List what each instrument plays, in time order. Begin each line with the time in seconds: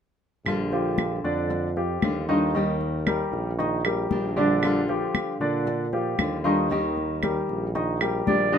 0.45 tuba A#1, nylon-string guitar D3 G3 D4 F4, high conga, claves
0.72 grand piano F3 F4 G4, high conga
0.98 high conga, claves
1.23 tuba F2, grand piano D3 D4 D5, high conga
1.50 muted nylon-string guitar stroke, high conga
1.76 grand piano F3 F4 G4, high conga
2.01 tuba D#2, nylon-string guitar D3 G3 D4 F4, high conga, claves
2.29 grand piano D#3 D#4 D#5, nylon-string guitar G3 D4 F4, high conga
2.54 grand piano D#3 D#5, nylon-string guitar D#3 G3 G4, high conga
2.81 high conga
3.07 grand piano G3 G4 A#4, high conga, claves
3.32 tuba A#1, high conga
3.58 grand piano D#3 D#4 D#5, muted nylon-string guitar stroke, high conga
3.85 grand piano G3 G4 A#4, high conga, claves
4.10 tuba A#1, nylon-string guitar D#3 G3 D4 G4, high conga
4.36 grand piano D3 D4 D5, nylon-string guitar G3 D4 G4
4.63 nylon-string guitar D3 G3 D4 F4, high conga, claves
4.88 grand piano F3 F4 G4, high conga
5.15 high conga, claves
5.40 tuba A#2, grand piano D3 D4 D5, high conga
5.67 muted nylon-string guitar stroke, high conga
5.93 grand piano F3 F4 G4, high conga
6.18 tuba D#2, nylon-string guitar D3 G3 D4 F4, high conga, claves
6.44 grand piano D#3 D#4 D#5, nylon-string guitar G3 D4 F4, high conga
6.70 nylon-string guitar D#3 G3 G4, grand piano D#3 D#5, high conga
6.97 high conga
7.23 grand piano G3 G4 A#4, high conga, claves
7.48 tuba A#1, high conga
7.75 grand piano D#3 D#4 D#5, muted nylon-string guitar stroke, high conga
8.01 grand piano G3 G4 A#4, high conga, claves
8.26 tuba A#1, nylon-string guitar D#3 G3 D4 G4, clarinet D5, high conga
8.52 grand piano D3 D4 D5, nylon-string guitar G3 D4 G4, clarinet D#5